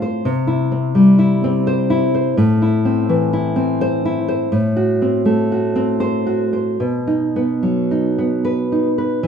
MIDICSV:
0, 0, Header, 1, 2, 480
1, 0, Start_track
1, 0, Tempo, 702576
1, 181, Time_signature, 3, 2, 24, 8
1, 1626, Tempo, 720288
1, 3546, Tempo, 750000
1, 4026, Tempo, 804290
1, 5972, End_track
2, 0, Start_track
2, 0, Title_t, "Nylon-string guitar"
2, 0, Program_c, 0, 24
2, 0, Note_on_c, 0, 45, 61
2, 0, Note_on_c, 0, 60, 52
2, 0, Note_on_c, 0, 65, 54
2, 14, Note_on_c, 0, 72, 59
2, 152, Note_off_c, 0, 45, 0
2, 172, Note_off_c, 0, 60, 0
2, 172, Note_on_c, 0, 48, 72
2, 175, Note_off_c, 0, 65, 0
2, 175, Note_off_c, 0, 72, 0
2, 323, Note_on_c, 0, 64, 51
2, 489, Note_on_c, 0, 60, 50
2, 648, Note_on_c, 0, 55, 69
2, 802, Note_off_c, 0, 64, 0
2, 811, Note_on_c, 0, 64, 61
2, 975, Note_off_c, 0, 60, 0
2, 983, Note_on_c, 0, 60, 65
2, 1141, Note_on_c, 0, 72, 78
2, 1290, Note_off_c, 0, 64, 0
2, 1298, Note_on_c, 0, 64, 65
2, 1381, Note_off_c, 0, 55, 0
2, 1400, Note_off_c, 0, 72, 0
2, 1466, Note_on_c, 0, 72, 58
2, 1595, Note_off_c, 0, 48, 0
2, 1622, Note_on_c, 0, 45, 76
2, 1624, Note_off_c, 0, 64, 0
2, 1627, Note_off_c, 0, 72, 0
2, 1629, Note_off_c, 0, 60, 0
2, 1786, Note_on_c, 0, 64, 59
2, 1939, Note_on_c, 0, 60, 52
2, 2101, Note_on_c, 0, 52, 64
2, 2252, Note_off_c, 0, 64, 0
2, 2260, Note_on_c, 0, 64, 63
2, 2403, Note_off_c, 0, 60, 0
2, 2411, Note_on_c, 0, 60, 64
2, 2580, Note_on_c, 0, 72, 87
2, 2734, Note_off_c, 0, 64, 0
2, 2742, Note_on_c, 0, 64, 62
2, 2819, Note_off_c, 0, 52, 0
2, 2836, Note_off_c, 0, 72, 0
2, 2895, Note_on_c, 0, 72, 67
2, 3030, Note_off_c, 0, 45, 0
2, 3052, Note_off_c, 0, 60, 0
2, 3052, Note_on_c, 0, 45, 72
2, 3056, Note_off_c, 0, 72, 0
2, 3058, Note_off_c, 0, 64, 0
2, 3215, Note_on_c, 0, 66, 63
2, 3384, Note_on_c, 0, 60, 56
2, 3541, Note_on_c, 0, 57, 62
2, 3702, Note_off_c, 0, 66, 0
2, 3710, Note_on_c, 0, 66, 59
2, 3855, Note_off_c, 0, 60, 0
2, 3862, Note_on_c, 0, 60, 60
2, 4020, Note_on_c, 0, 72, 80
2, 4170, Note_off_c, 0, 66, 0
2, 4177, Note_on_c, 0, 66, 53
2, 4256, Note_off_c, 0, 57, 0
2, 4271, Note_off_c, 0, 72, 0
2, 4335, Note_on_c, 0, 72, 55
2, 4474, Note_off_c, 0, 45, 0
2, 4496, Note_on_c, 0, 47, 63
2, 4500, Note_off_c, 0, 60, 0
2, 4500, Note_off_c, 0, 66, 0
2, 4500, Note_off_c, 0, 72, 0
2, 4660, Note_on_c, 0, 63, 53
2, 4831, Note_on_c, 0, 59, 52
2, 4990, Note_on_c, 0, 54, 56
2, 5153, Note_off_c, 0, 63, 0
2, 5160, Note_on_c, 0, 63, 54
2, 5315, Note_off_c, 0, 59, 0
2, 5322, Note_on_c, 0, 59, 52
2, 5479, Note_on_c, 0, 71, 74
2, 5636, Note_off_c, 0, 63, 0
2, 5643, Note_on_c, 0, 63, 51
2, 5713, Note_off_c, 0, 54, 0
2, 5733, Note_off_c, 0, 71, 0
2, 5798, Note_on_c, 0, 71, 52
2, 5922, Note_off_c, 0, 47, 0
2, 5948, Note_off_c, 0, 59, 0
2, 5948, Note_on_c, 0, 52, 74
2, 5949, Note_off_c, 0, 71, 0
2, 5951, Note_off_c, 0, 63, 0
2, 5972, Note_off_c, 0, 52, 0
2, 5972, End_track
0, 0, End_of_file